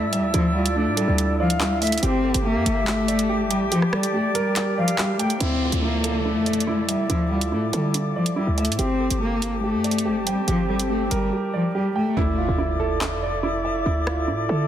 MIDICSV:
0, 0, Header, 1, 10, 480
1, 0, Start_track
1, 0, Key_signature, -1, "minor"
1, 0, Tempo, 422535
1, 383, Time_signature, 4, 2, 24, 8
1, 16671, End_track
2, 0, Start_track
2, 0, Title_t, "Flute section"
2, 0, Program_c, 0, 73
2, 0, Note_on_c, 0, 74, 76
2, 0, Note_on_c, 0, 81, 73
2, 0, Note_on_c, 0, 88, 88
2, 2026, Note_off_c, 0, 81, 0
2, 2039, Note_off_c, 0, 74, 0
2, 2265, Note_off_c, 0, 88, 0
2, 2302, Note_on_c, 0, 67, 81
2, 2302, Note_on_c, 0, 79, 74
2, 2302, Note_on_c, 0, 81, 75
2, 2302, Note_on_c, 0, 86, 88
2, 6104, Note_off_c, 0, 67, 0
2, 6104, Note_off_c, 0, 79, 0
2, 6104, Note_off_c, 0, 81, 0
2, 6104, Note_off_c, 0, 86, 0
2, 6143, Note_on_c, 0, 69, 74
2, 6143, Note_on_c, 0, 74, 66
2, 6143, Note_on_c, 0, 76, 67
2, 6144, Note_on_c, 0, 86, 84
2, 9944, Note_off_c, 0, 74, 0
2, 9944, Note_off_c, 0, 76, 0
2, 9945, Note_off_c, 0, 69, 0
2, 9984, Note_on_c, 0, 67, 76
2, 9984, Note_on_c, 0, 81, 69
2, 9985, Note_on_c, 0, 79, 70
2, 13479, Note_off_c, 0, 86, 0
2, 13507, Note_off_c, 0, 81, 0
2, 13539, Note_off_c, 0, 79, 0
2, 13548, Note_off_c, 0, 67, 0
2, 13818, Note_on_c, 0, 74, 72
2, 13819, Note_on_c, 0, 76, 71
2, 13820, Note_on_c, 0, 69, 74
2, 13820, Note_on_c, 0, 86, 83
2, 16671, Note_off_c, 0, 69, 0
2, 16671, Note_off_c, 0, 74, 0
2, 16671, Note_off_c, 0, 76, 0
2, 16671, Note_off_c, 0, 86, 0
2, 16671, End_track
3, 0, Start_track
3, 0, Title_t, "Flute"
3, 0, Program_c, 1, 73
3, 0, Note_on_c, 1, 76, 96
3, 336, Note_off_c, 1, 76, 0
3, 625, Note_on_c, 1, 74, 81
3, 1538, Note_off_c, 1, 74, 0
3, 1585, Note_on_c, 1, 77, 90
3, 2035, Note_off_c, 1, 77, 0
3, 2062, Note_on_c, 1, 76, 96
3, 2290, Note_off_c, 1, 76, 0
3, 2782, Note_on_c, 1, 76, 93
3, 4177, Note_off_c, 1, 76, 0
3, 4463, Note_on_c, 1, 74, 85
3, 5377, Note_off_c, 1, 74, 0
3, 5423, Note_on_c, 1, 77, 94
3, 5874, Note_off_c, 1, 77, 0
3, 5904, Note_on_c, 1, 79, 80
3, 6131, Note_off_c, 1, 79, 0
3, 16671, End_track
4, 0, Start_track
4, 0, Title_t, "Grand piano"
4, 0, Program_c, 2, 0
4, 0, Control_c, 2, 64, 127
4, 0, Note_on_c, 2, 64, 92
4, 0, Note_on_c, 2, 65, 76
4, 0, Note_on_c, 2, 69, 101
4, 0, Note_on_c, 2, 74, 81
4, 144, Note_on_c, 2, 76, 86
4, 371, Note_off_c, 2, 64, 0
4, 380, Note_off_c, 2, 69, 0
4, 388, Note_on_c, 2, 64, 96
4, 626, Note_off_c, 2, 65, 0
4, 626, Note_on_c, 2, 65, 79
4, 860, Note_on_c, 2, 62, 78
4, 864, Note_off_c, 2, 74, 0
4, 1098, Note_on_c, 2, 69, 98
4, 1343, Note_off_c, 2, 76, 0
4, 1585, Note_off_c, 2, 64, 0
4, 1588, Note_on_c, 2, 74, 82
4, 1819, Note_on_c, 2, 64, 96
4, 1824, Note_off_c, 2, 65, 0
4, 2061, Note_off_c, 2, 62, 0
4, 2064, Note_on_c, 2, 76, 86
4, 2300, Note_off_c, 2, 69, 0
4, 2301, Note_off_c, 2, 64, 0
4, 2303, Note_off_c, 2, 76, 0
4, 2305, Note_on_c, 2, 67, 91
4, 2306, Note_off_c, 2, 74, 0
4, 2320, Control_c, 2, 64, 0
4, 2490, Control_c, 2, 64, 127
4, 2541, Note_on_c, 2, 69, 78
4, 2762, Note_off_c, 2, 67, 0
4, 2779, Note_on_c, 2, 67, 74
4, 3247, Note_off_c, 2, 67, 0
4, 3265, Note_on_c, 2, 67, 75
4, 3498, Note_on_c, 2, 74, 79
4, 3723, Note_off_c, 2, 67, 0
4, 3740, Note_on_c, 2, 67, 92
4, 3742, Note_off_c, 2, 69, 0
4, 3982, Note_on_c, 2, 79, 89
4, 4205, Note_off_c, 2, 67, 0
4, 4222, Note_on_c, 2, 67, 102
4, 4462, Note_on_c, 2, 69, 80
4, 4685, Note_off_c, 2, 67, 0
4, 4700, Note_off_c, 2, 74, 0
4, 4702, Note_on_c, 2, 67, 75
4, 4940, Note_on_c, 2, 70, 110
4, 5175, Note_off_c, 2, 67, 0
4, 5182, Note_off_c, 2, 79, 0
4, 5192, Note_on_c, 2, 67, 79
4, 5425, Note_on_c, 2, 74, 80
4, 5648, Note_off_c, 2, 67, 0
4, 5662, Note_off_c, 2, 69, 0
4, 5665, Note_on_c, 2, 67, 91
4, 5901, Note_on_c, 2, 79, 90
4, 6141, Note_off_c, 2, 70, 0
4, 6142, Note_off_c, 2, 79, 0
4, 6144, Note_off_c, 2, 67, 0
4, 6144, Note_off_c, 2, 74, 0
4, 6145, Note_on_c, 2, 64, 90
4, 6158, Control_c, 2, 64, 0
4, 6342, Control_c, 2, 64, 127
4, 6383, Note_on_c, 2, 65, 67
4, 6599, Note_off_c, 2, 64, 0
4, 6616, Note_on_c, 2, 64, 68
4, 6858, Note_on_c, 2, 69, 98
4, 7087, Note_off_c, 2, 64, 0
4, 7104, Note_on_c, 2, 64, 66
4, 7344, Note_on_c, 2, 74, 77
4, 7562, Note_off_c, 2, 64, 0
4, 7580, Note_on_c, 2, 64, 87
4, 7583, Note_off_c, 2, 65, 0
4, 7823, Note_on_c, 2, 76, 79
4, 8050, Note_off_c, 2, 64, 0
4, 8060, Note_off_c, 2, 69, 0
4, 8067, Note_on_c, 2, 64, 94
4, 8307, Note_on_c, 2, 65, 76
4, 8525, Note_off_c, 2, 64, 0
4, 8542, Note_on_c, 2, 64, 72
4, 8543, Note_off_c, 2, 74, 0
4, 8780, Note_on_c, 2, 69, 91
4, 9009, Note_off_c, 2, 64, 0
4, 9023, Note_off_c, 2, 76, 0
4, 9026, Note_on_c, 2, 64, 66
4, 9271, Note_on_c, 2, 74, 78
4, 9483, Note_off_c, 2, 64, 0
4, 9500, Note_on_c, 2, 64, 88
4, 9505, Note_off_c, 2, 65, 0
4, 9745, Note_on_c, 2, 76, 80
4, 9981, Note_off_c, 2, 64, 0
4, 9981, Note_off_c, 2, 69, 0
4, 9984, Note_off_c, 2, 76, 0
4, 9985, Note_on_c, 2, 67, 88
4, 9987, Note_off_c, 2, 74, 0
4, 9999, Control_c, 2, 64, 0
4, 10195, Control_c, 2, 64, 127
4, 10221, Note_on_c, 2, 69, 71
4, 10444, Note_off_c, 2, 67, 0
4, 10461, Note_on_c, 2, 67, 66
4, 10929, Note_off_c, 2, 67, 0
4, 10947, Note_on_c, 2, 67, 68
4, 11179, Note_on_c, 2, 74, 72
4, 11405, Note_off_c, 2, 67, 0
4, 11422, Note_off_c, 2, 69, 0
4, 11422, Note_on_c, 2, 67, 86
4, 11664, Note_on_c, 2, 79, 85
4, 11885, Note_off_c, 2, 67, 0
4, 11902, Note_on_c, 2, 67, 101
4, 12142, Note_on_c, 2, 69, 75
4, 12365, Note_off_c, 2, 67, 0
4, 12381, Note_off_c, 2, 74, 0
4, 12382, Note_on_c, 2, 67, 73
4, 12619, Note_on_c, 2, 70, 102
4, 12852, Note_off_c, 2, 67, 0
4, 12863, Note_off_c, 2, 79, 0
4, 12869, Note_on_c, 2, 67, 74
4, 13104, Note_on_c, 2, 74, 78
4, 13329, Note_off_c, 2, 67, 0
4, 13342, Note_off_c, 2, 69, 0
4, 13346, Note_on_c, 2, 67, 86
4, 13582, Note_on_c, 2, 79, 86
4, 13821, Note_off_c, 2, 70, 0
4, 13822, Note_off_c, 2, 79, 0
4, 13823, Note_off_c, 2, 74, 0
4, 13824, Note_off_c, 2, 67, 0
4, 13824, Note_on_c, 2, 64, 95
4, 13837, Control_c, 2, 64, 0
4, 14059, Control_c, 2, 64, 127
4, 14061, Note_on_c, 2, 65, 74
4, 14278, Note_off_c, 2, 64, 0
4, 14295, Note_on_c, 2, 64, 73
4, 14538, Note_on_c, 2, 69, 99
4, 14765, Note_off_c, 2, 64, 0
4, 14782, Note_on_c, 2, 64, 71
4, 15024, Note_on_c, 2, 74, 81
4, 15241, Note_off_c, 2, 64, 0
4, 15258, Note_on_c, 2, 64, 89
4, 15262, Note_off_c, 2, 65, 0
4, 15503, Note_on_c, 2, 76, 82
4, 15730, Note_off_c, 2, 64, 0
4, 15740, Note_off_c, 2, 69, 0
4, 15747, Note_on_c, 2, 64, 96
4, 15986, Note_on_c, 2, 65, 80
4, 16204, Note_off_c, 2, 64, 0
4, 16221, Note_on_c, 2, 64, 74
4, 16223, Note_off_c, 2, 74, 0
4, 16459, Note_on_c, 2, 69, 94
4, 16671, Note_off_c, 2, 64, 0
4, 16671, Note_off_c, 2, 65, 0
4, 16671, Note_off_c, 2, 69, 0
4, 16671, Note_off_c, 2, 76, 0
4, 16671, End_track
5, 0, Start_track
5, 0, Title_t, "Cello"
5, 0, Program_c, 3, 42
5, 144, Note_on_c, 3, 55, 88
5, 325, Note_off_c, 3, 55, 0
5, 384, Note_on_c, 3, 53, 117
5, 565, Note_off_c, 3, 53, 0
5, 626, Note_on_c, 3, 55, 86
5, 806, Note_off_c, 3, 55, 0
5, 862, Note_on_c, 3, 57, 85
5, 1044, Note_off_c, 3, 57, 0
5, 1105, Note_on_c, 3, 55, 86
5, 1285, Note_off_c, 3, 55, 0
5, 1585, Note_on_c, 3, 53, 92
5, 1765, Note_off_c, 3, 53, 0
5, 1822, Note_on_c, 3, 55, 84
5, 2003, Note_off_c, 3, 55, 0
5, 2065, Note_on_c, 3, 57, 77
5, 2245, Note_off_c, 3, 57, 0
5, 2304, Note_on_c, 3, 60, 102
5, 2754, Note_off_c, 3, 60, 0
5, 2786, Note_on_c, 3, 58, 88
5, 3236, Note_off_c, 3, 58, 0
5, 3262, Note_on_c, 3, 57, 101
5, 3939, Note_off_c, 3, 57, 0
5, 3984, Note_on_c, 3, 55, 83
5, 4165, Note_off_c, 3, 55, 0
5, 4223, Note_on_c, 3, 53, 115
5, 4404, Note_off_c, 3, 53, 0
5, 4461, Note_on_c, 3, 55, 82
5, 4643, Note_off_c, 3, 55, 0
5, 4700, Note_on_c, 3, 57, 83
5, 4882, Note_off_c, 3, 57, 0
5, 4945, Note_on_c, 3, 55, 82
5, 5125, Note_off_c, 3, 55, 0
5, 5422, Note_on_c, 3, 53, 82
5, 5603, Note_off_c, 3, 53, 0
5, 5663, Note_on_c, 3, 55, 82
5, 5844, Note_off_c, 3, 55, 0
5, 5904, Note_on_c, 3, 57, 88
5, 6085, Note_off_c, 3, 57, 0
5, 6142, Note_on_c, 3, 60, 98
5, 6594, Note_off_c, 3, 60, 0
5, 6625, Note_on_c, 3, 58, 77
5, 7075, Note_off_c, 3, 58, 0
5, 7100, Note_on_c, 3, 57, 96
5, 7778, Note_off_c, 3, 57, 0
5, 7820, Note_on_c, 3, 55, 80
5, 8002, Note_off_c, 3, 55, 0
5, 8064, Note_on_c, 3, 53, 108
5, 8245, Note_off_c, 3, 53, 0
5, 8307, Note_on_c, 3, 55, 79
5, 8487, Note_off_c, 3, 55, 0
5, 8545, Note_on_c, 3, 57, 74
5, 8725, Note_off_c, 3, 57, 0
5, 8789, Note_on_c, 3, 55, 80
5, 8968, Note_off_c, 3, 55, 0
5, 9263, Note_on_c, 3, 53, 84
5, 9444, Note_off_c, 3, 53, 0
5, 9503, Note_on_c, 3, 55, 82
5, 9684, Note_off_c, 3, 55, 0
5, 9745, Note_on_c, 3, 57, 74
5, 9925, Note_off_c, 3, 57, 0
5, 9982, Note_on_c, 3, 60, 98
5, 10434, Note_off_c, 3, 60, 0
5, 10467, Note_on_c, 3, 58, 84
5, 10916, Note_off_c, 3, 58, 0
5, 10943, Note_on_c, 3, 57, 94
5, 11620, Note_off_c, 3, 57, 0
5, 11662, Note_on_c, 3, 55, 79
5, 11843, Note_off_c, 3, 55, 0
5, 11902, Note_on_c, 3, 53, 111
5, 12083, Note_off_c, 3, 53, 0
5, 12141, Note_on_c, 3, 55, 81
5, 12323, Note_off_c, 3, 55, 0
5, 12381, Note_on_c, 3, 57, 78
5, 12562, Note_off_c, 3, 57, 0
5, 12622, Note_on_c, 3, 55, 79
5, 12803, Note_off_c, 3, 55, 0
5, 13104, Note_on_c, 3, 53, 80
5, 13285, Note_off_c, 3, 53, 0
5, 13345, Note_on_c, 3, 55, 84
5, 13525, Note_off_c, 3, 55, 0
5, 13588, Note_on_c, 3, 57, 83
5, 13767, Note_off_c, 3, 57, 0
5, 16671, End_track
6, 0, Start_track
6, 0, Title_t, "808-style bass"
6, 0, Program_c, 4, 38
6, 25, Note_on_c, 4, 45, 99
6, 206, Note_on_c, 4, 38, 103
6, 223, Note_off_c, 4, 45, 0
6, 376, Note_off_c, 4, 38, 0
6, 386, Note_on_c, 4, 38, 108
6, 986, Note_on_c, 4, 45, 105
6, 1003, Note_off_c, 4, 38, 0
6, 1212, Note_off_c, 4, 45, 0
6, 1225, Note_on_c, 4, 38, 105
6, 2260, Note_off_c, 4, 38, 0
6, 2304, Note_on_c, 4, 31, 109
6, 2649, Note_off_c, 4, 31, 0
6, 2665, Note_on_c, 4, 31, 110
6, 2905, Note_on_c, 4, 43, 101
6, 2922, Note_off_c, 4, 31, 0
6, 3018, Note_off_c, 4, 43, 0
6, 3024, Note_on_c, 4, 31, 105
6, 4103, Note_on_c, 4, 34, 99
6, 4120, Note_off_c, 4, 31, 0
6, 4223, Note_off_c, 4, 34, 0
6, 6142, Note_on_c, 4, 38, 109
6, 6488, Note_off_c, 4, 38, 0
6, 6501, Note_on_c, 4, 38, 101
6, 7223, Note_on_c, 4, 41, 99
6, 7240, Note_off_c, 4, 38, 0
6, 7907, Note_off_c, 4, 41, 0
6, 8061, Note_on_c, 4, 38, 104
6, 8542, Note_on_c, 4, 45, 101
6, 8559, Note_off_c, 4, 38, 0
6, 8770, Note_off_c, 4, 45, 0
6, 8785, Note_on_c, 4, 50, 104
6, 9244, Note_off_c, 4, 50, 0
6, 9624, Note_on_c, 4, 38, 100
6, 9863, Note_on_c, 4, 45, 95
6, 9880, Note_off_c, 4, 38, 0
6, 9977, Note_off_c, 4, 45, 0
6, 9983, Note_on_c, 4, 31, 111
6, 10328, Note_off_c, 4, 31, 0
6, 10343, Note_on_c, 4, 31, 103
6, 11064, Note_on_c, 4, 43, 98
6, 11081, Note_off_c, 4, 31, 0
6, 11423, Note_on_c, 4, 31, 101
6, 11440, Note_off_c, 4, 43, 0
6, 11765, Note_off_c, 4, 31, 0
6, 11903, Note_on_c, 4, 31, 109
6, 12594, Note_off_c, 4, 31, 0
6, 12622, Note_on_c, 4, 31, 99
6, 12853, Note_off_c, 4, 31, 0
6, 13823, Note_on_c, 4, 38, 110
6, 14169, Note_off_c, 4, 38, 0
6, 14183, Note_on_c, 4, 38, 102
6, 14903, Note_on_c, 4, 41, 100
6, 14920, Note_off_c, 4, 38, 0
6, 15587, Note_off_c, 4, 41, 0
6, 15744, Note_on_c, 4, 38, 103
6, 16223, Note_on_c, 4, 45, 103
6, 16240, Note_off_c, 4, 38, 0
6, 16451, Note_off_c, 4, 45, 0
6, 16463, Note_on_c, 4, 50, 102
6, 16671, Note_off_c, 4, 50, 0
6, 16671, End_track
7, 0, Start_track
7, 0, Title_t, "Downlifter"
7, 0, Program_c, 5, 103
7, 6142, Note_on_c, 5, 60, 87
7, 9982, Note_off_c, 5, 60, 0
7, 16671, End_track
8, 0, Start_track
8, 0, Title_t, "Impact"
8, 0, Program_c, 6, 103
8, 13822, Note_on_c, 6, 60, 86
8, 15742, Note_off_c, 6, 60, 0
8, 16671, End_track
9, 0, Start_track
9, 0, Title_t, "Swell"
9, 0, Program_c, 7, 103
9, 9983, Note_on_c, 7, 60, 86
9, 12863, Note_off_c, 7, 60, 0
9, 16671, End_track
10, 0, Start_track
10, 0, Title_t, "Drums"
10, 144, Note_on_c, 9, 42, 84
10, 258, Note_off_c, 9, 42, 0
10, 385, Note_on_c, 9, 42, 75
10, 498, Note_off_c, 9, 42, 0
10, 745, Note_on_c, 9, 42, 76
10, 859, Note_off_c, 9, 42, 0
10, 1105, Note_on_c, 9, 42, 84
10, 1218, Note_off_c, 9, 42, 0
10, 1345, Note_on_c, 9, 42, 93
10, 1458, Note_off_c, 9, 42, 0
10, 1704, Note_on_c, 9, 42, 77
10, 1818, Note_off_c, 9, 42, 0
10, 1824, Note_on_c, 9, 39, 117
10, 1937, Note_off_c, 9, 39, 0
10, 2065, Note_on_c, 9, 42, 51
10, 2065, Note_on_c, 9, 46, 64
10, 2124, Note_off_c, 9, 42, 0
10, 2124, Note_on_c, 9, 42, 61
10, 2179, Note_off_c, 9, 46, 0
10, 2185, Note_off_c, 9, 42, 0
10, 2185, Note_on_c, 9, 42, 76
10, 2245, Note_off_c, 9, 42, 0
10, 2245, Note_on_c, 9, 42, 87
10, 2303, Note_off_c, 9, 42, 0
10, 2303, Note_on_c, 9, 42, 76
10, 2417, Note_off_c, 9, 42, 0
10, 2663, Note_on_c, 9, 42, 76
10, 2776, Note_off_c, 9, 42, 0
10, 3023, Note_on_c, 9, 42, 86
10, 3137, Note_off_c, 9, 42, 0
10, 3263, Note_on_c, 9, 39, 117
10, 3376, Note_off_c, 9, 39, 0
10, 3503, Note_on_c, 9, 42, 68
10, 3616, Note_off_c, 9, 42, 0
10, 3623, Note_on_c, 9, 42, 79
10, 3736, Note_off_c, 9, 42, 0
10, 3982, Note_on_c, 9, 42, 88
10, 4096, Note_off_c, 9, 42, 0
10, 4223, Note_on_c, 9, 42, 78
10, 4336, Note_off_c, 9, 42, 0
10, 4343, Note_on_c, 9, 37, 71
10, 4457, Note_off_c, 9, 37, 0
10, 4462, Note_on_c, 9, 37, 100
10, 4576, Note_off_c, 9, 37, 0
10, 4582, Note_on_c, 9, 42, 76
10, 4695, Note_off_c, 9, 42, 0
10, 4942, Note_on_c, 9, 42, 86
10, 5056, Note_off_c, 9, 42, 0
10, 5181, Note_on_c, 9, 39, 70
10, 5181, Note_on_c, 9, 42, 91
10, 5295, Note_off_c, 9, 39, 0
10, 5295, Note_off_c, 9, 42, 0
10, 5542, Note_on_c, 9, 42, 79
10, 5655, Note_off_c, 9, 42, 0
10, 5660, Note_on_c, 9, 39, 115
10, 5774, Note_off_c, 9, 39, 0
10, 5901, Note_on_c, 9, 42, 68
10, 6015, Note_off_c, 9, 42, 0
10, 6021, Note_on_c, 9, 42, 71
10, 6134, Note_off_c, 9, 42, 0
10, 6140, Note_on_c, 9, 42, 71
10, 6253, Note_off_c, 9, 42, 0
10, 6502, Note_on_c, 9, 42, 71
10, 6616, Note_off_c, 9, 42, 0
10, 6862, Note_on_c, 9, 42, 77
10, 6976, Note_off_c, 9, 42, 0
10, 7342, Note_on_c, 9, 42, 39
10, 7423, Note_off_c, 9, 42, 0
10, 7423, Note_on_c, 9, 42, 54
10, 7503, Note_off_c, 9, 42, 0
10, 7503, Note_on_c, 9, 42, 67
10, 7616, Note_off_c, 9, 42, 0
10, 7822, Note_on_c, 9, 42, 84
10, 7936, Note_off_c, 9, 42, 0
10, 8062, Note_on_c, 9, 42, 71
10, 8175, Note_off_c, 9, 42, 0
10, 8422, Note_on_c, 9, 42, 73
10, 8536, Note_off_c, 9, 42, 0
10, 8783, Note_on_c, 9, 42, 81
10, 8897, Note_off_c, 9, 42, 0
10, 9023, Note_on_c, 9, 42, 84
10, 9136, Note_off_c, 9, 42, 0
10, 9383, Note_on_c, 9, 42, 76
10, 9497, Note_off_c, 9, 42, 0
10, 9744, Note_on_c, 9, 42, 46
10, 9823, Note_off_c, 9, 42, 0
10, 9823, Note_on_c, 9, 42, 63
10, 9903, Note_off_c, 9, 42, 0
10, 9903, Note_on_c, 9, 42, 84
10, 9983, Note_off_c, 9, 42, 0
10, 9983, Note_on_c, 9, 42, 72
10, 10097, Note_off_c, 9, 42, 0
10, 10343, Note_on_c, 9, 42, 73
10, 10457, Note_off_c, 9, 42, 0
10, 10703, Note_on_c, 9, 42, 77
10, 10816, Note_off_c, 9, 42, 0
10, 11182, Note_on_c, 9, 42, 39
10, 11262, Note_off_c, 9, 42, 0
10, 11262, Note_on_c, 9, 42, 53
10, 11343, Note_off_c, 9, 42, 0
10, 11343, Note_on_c, 9, 42, 64
10, 11456, Note_off_c, 9, 42, 0
10, 11663, Note_on_c, 9, 42, 82
10, 11777, Note_off_c, 9, 42, 0
10, 11903, Note_on_c, 9, 42, 68
10, 12017, Note_off_c, 9, 42, 0
10, 12263, Note_on_c, 9, 42, 72
10, 12376, Note_off_c, 9, 42, 0
10, 12623, Note_on_c, 9, 42, 78
10, 12736, Note_off_c, 9, 42, 0
10, 14781, Note_on_c, 9, 39, 112
10, 14895, Note_off_c, 9, 39, 0
10, 15983, Note_on_c, 9, 37, 103
10, 16096, Note_off_c, 9, 37, 0
10, 16671, End_track
0, 0, End_of_file